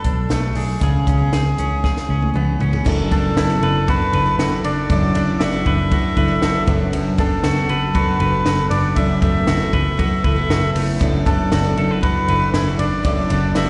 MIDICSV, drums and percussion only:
0, 0, Header, 1, 2, 480
1, 0, Start_track
1, 0, Tempo, 509771
1, 765, Time_signature, 4, 2, 24, 8
1, 12897, End_track
2, 0, Start_track
2, 0, Title_t, "Drums"
2, 42, Note_on_c, 9, 42, 61
2, 44, Note_on_c, 9, 36, 74
2, 136, Note_off_c, 9, 42, 0
2, 138, Note_off_c, 9, 36, 0
2, 284, Note_on_c, 9, 38, 86
2, 287, Note_on_c, 9, 42, 73
2, 378, Note_off_c, 9, 38, 0
2, 381, Note_off_c, 9, 42, 0
2, 522, Note_on_c, 9, 46, 70
2, 616, Note_off_c, 9, 46, 0
2, 766, Note_on_c, 9, 42, 96
2, 767, Note_on_c, 9, 36, 101
2, 861, Note_off_c, 9, 36, 0
2, 861, Note_off_c, 9, 42, 0
2, 1008, Note_on_c, 9, 36, 86
2, 1011, Note_on_c, 9, 42, 79
2, 1102, Note_off_c, 9, 36, 0
2, 1106, Note_off_c, 9, 42, 0
2, 1250, Note_on_c, 9, 38, 90
2, 1252, Note_on_c, 9, 42, 86
2, 1344, Note_off_c, 9, 38, 0
2, 1346, Note_off_c, 9, 42, 0
2, 1492, Note_on_c, 9, 42, 60
2, 1586, Note_off_c, 9, 42, 0
2, 1731, Note_on_c, 9, 38, 49
2, 1733, Note_on_c, 9, 36, 86
2, 1825, Note_off_c, 9, 38, 0
2, 1827, Note_off_c, 9, 36, 0
2, 1851, Note_on_c, 9, 38, 44
2, 1946, Note_off_c, 9, 38, 0
2, 2094, Note_on_c, 9, 48, 58
2, 2189, Note_off_c, 9, 48, 0
2, 2218, Note_on_c, 9, 47, 65
2, 2312, Note_off_c, 9, 47, 0
2, 2453, Note_on_c, 9, 43, 81
2, 2548, Note_off_c, 9, 43, 0
2, 2572, Note_on_c, 9, 43, 81
2, 2666, Note_off_c, 9, 43, 0
2, 2693, Note_on_c, 9, 36, 116
2, 2694, Note_on_c, 9, 49, 93
2, 2788, Note_off_c, 9, 36, 0
2, 2788, Note_off_c, 9, 49, 0
2, 2934, Note_on_c, 9, 36, 99
2, 2934, Note_on_c, 9, 51, 67
2, 3028, Note_off_c, 9, 36, 0
2, 3028, Note_off_c, 9, 51, 0
2, 3173, Note_on_c, 9, 38, 105
2, 3175, Note_on_c, 9, 51, 78
2, 3267, Note_off_c, 9, 38, 0
2, 3269, Note_off_c, 9, 51, 0
2, 3414, Note_on_c, 9, 51, 50
2, 3508, Note_off_c, 9, 51, 0
2, 3656, Note_on_c, 9, 36, 99
2, 3656, Note_on_c, 9, 51, 66
2, 3750, Note_off_c, 9, 36, 0
2, 3750, Note_off_c, 9, 51, 0
2, 3892, Note_on_c, 9, 51, 55
2, 3986, Note_off_c, 9, 51, 0
2, 4136, Note_on_c, 9, 38, 94
2, 4138, Note_on_c, 9, 51, 65
2, 4230, Note_off_c, 9, 38, 0
2, 4232, Note_off_c, 9, 51, 0
2, 4373, Note_on_c, 9, 51, 70
2, 4467, Note_off_c, 9, 51, 0
2, 4613, Note_on_c, 9, 36, 113
2, 4613, Note_on_c, 9, 51, 75
2, 4707, Note_off_c, 9, 36, 0
2, 4707, Note_off_c, 9, 51, 0
2, 4851, Note_on_c, 9, 51, 65
2, 4945, Note_off_c, 9, 51, 0
2, 5089, Note_on_c, 9, 38, 105
2, 5091, Note_on_c, 9, 51, 77
2, 5183, Note_off_c, 9, 38, 0
2, 5185, Note_off_c, 9, 51, 0
2, 5328, Note_on_c, 9, 51, 56
2, 5330, Note_on_c, 9, 36, 89
2, 5422, Note_off_c, 9, 51, 0
2, 5424, Note_off_c, 9, 36, 0
2, 5570, Note_on_c, 9, 51, 67
2, 5571, Note_on_c, 9, 36, 97
2, 5665, Note_off_c, 9, 36, 0
2, 5665, Note_off_c, 9, 51, 0
2, 5808, Note_on_c, 9, 36, 78
2, 5808, Note_on_c, 9, 51, 59
2, 5902, Note_off_c, 9, 51, 0
2, 5903, Note_off_c, 9, 36, 0
2, 6046, Note_on_c, 9, 38, 95
2, 6049, Note_on_c, 9, 51, 66
2, 6140, Note_off_c, 9, 38, 0
2, 6143, Note_off_c, 9, 51, 0
2, 6286, Note_on_c, 9, 51, 64
2, 6287, Note_on_c, 9, 36, 110
2, 6380, Note_off_c, 9, 51, 0
2, 6381, Note_off_c, 9, 36, 0
2, 6527, Note_on_c, 9, 51, 81
2, 6621, Note_off_c, 9, 51, 0
2, 6765, Note_on_c, 9, 36, 97
2, 6766, Note_on_c, 9, 51, 68
2, 6859, Note_off_c, 9, 36, 0
2, 6860, Note_off_c, 9, 51, 0
2, 7002, Note_on_c, 9, 38, 99
2, 7004, Note_on_c, 9, 51, 81
2, 7096, Note_off_c, 9, 38, 0
2, 7098, Note_off_c, 9, 51, 0
2, 7242, Note_on_c, 9, 51, 51
2, 7337, Note_off_c, 9, 51, 0
2, 7484, Note_on_c, 9, 51, 73
2, 7485, Note_on_c, 9, 36, 96
2, 7578, Note_off_c, 9, 51, 0
2, 7579, Note_off_c, 9, 36, 0
2, 7721, Note_on_c, 9, 51, 57
2, 7815, Note_off_c, 9, 51, 0
2, 7963, Note_on_c, 9, 38, 94
2, 7965, Note_on_c, 9, 51, 60
2, 8057, Note_off_c, 9, 38, 0
2, 8060, Note_off_c, 9, 51, 0
2, 8202, Note_on_c, 9, 51, 70
2, 8296, Note_off_c, 9, 51, 0
2, 8440, Note_on_c, 9, 51, 80
2, 8442, Note_on_c, 9, 36, 105
2, 8535, Note_off_c, 9, 51, 0
2, 8536, Note_off_c, 9, 36, 0
2, 8682, Note_on_c, 9, 36, 101
2, 8682, Note_on_c, 9, 51, 71
2, 8776, Note_off_c, 9, 36, 0
2, 8777, Note_off_c, 9, 51, 0
2, 8919, Note_on_c, 9, 38, 101
2, 8922, Note_on_c, 9, 51, 82
2, 9014, Note_off_c, 9, 38, 0
2, 9016, Note_off_c, 9, 51, 0
2, 9164, Note_on_c, 9, 36, 86
2, 9164, Note_on_c, 9, 51, 53
2, 9258, Note_off_c, 9, 36, 0
2, 9258, Note_off_c, 9, 51, 0
2, 9407, Note_on_c, 9, 36, 95
2, 9409, Note_on_c, 9, 51, 69
2, 9501, Note_off_c, 9, 36, 0
2, 9503, Note_off_c, 9, 51, 0
2, 9645, Note_on_c, 9, 36, 83
2, 9646, Note_on_c, 9, 51, 56
2, 9740, Note_off_c, 9, 36, 0
2, 9740, Note_off_c, 9, 51, 0
2, 9890, Note_on_c, 9, 38, 97
2, 9893, Note_on_c, 9, 51, 60
2, 9984, Note_off_c, 9, 38, 0
2, 9987, Note_off_c, 9, 51, 0
2, 10129, Note_on_c, 9, 46, 82
2, 10129, Note_on_c, 9, 51, 65
2, 10223, Note_off_c, 9, 46, 0
2, 10223, Note_off_c, 9, 51, 0
2, 10366, Note_on_c, 9, 36, 114
2, 10367, Note_on_c, 9, 44, 66
2, 10367, Note_on_c, 9, 51, 80
2, 10460, Note_off_c, 9, 36, 0
2, 10461, Note_off_c, 9, 44, 0
2, 10462, Note_off_c, 9, 51, 0
2, 10606, Note_on_c, 9, 36, 98
2, 10609, Note_on_c, 9, 51, 67
2, 10700, Note_off_c, 9, 36, 0
2, 10703, Note_off_c, 9, 51, 0
2, 10845, Note_on_c, 9, 38, 102
2, 10847, Note_on_c, 9, 51, 80
2, 10939, Note_off_c, 9, 38, 0
2, 10941, Note_off_c, 9, 51, 0
2, 11086, Note_on_c, 9, 51, 51
2, 11181, Note_off_c, 9, 51, 0
2, 11328, Note_on_c, 9, 36, 96
2, 11328, Note_on_c, 9, 51, 69
2, 11422, Note_off_c, 9, 36, 0
2, 11423, Note_off_c, 9, 51, 0
2, 11566, Note_on_c, 9, 51, 60
2, 11661, Note_off_c, 9, 51, 0
2, 11806, Note_on_c, 9, 38, 93
2, 11808, Note_on_c, 9, 51, 68
2, 11900, Note_off_c, 9, 38, 0
2, 11903, Note_off_c, 9, 51, 0
2, 12043, Note_on_c, 9, 51, 68
2, 12138, Note_off_c, 9, 51, 0
2, 12285, Note_on_c, 9, 36, 120
2, 12286, Note_on_c, 9, 51, 86
2, 12379, Note_off_c, 9, 36, 0
2, 12380, Note_off_c, 9, 51, 0
2, 12525, Note_on_c, 9, 51, 70
2, 12620, Note_off_c, 9, 51, 0
2, 12760, Note_on_c, 9, 38, 99
2, 12763, Note_on_c, 9, 51, 83
2, 12855, Note_off_c, 9, 38, 0
2, 12857, Note_off_c, 9, 51, 0
2, 12897, End_track
0, 0, End_of_file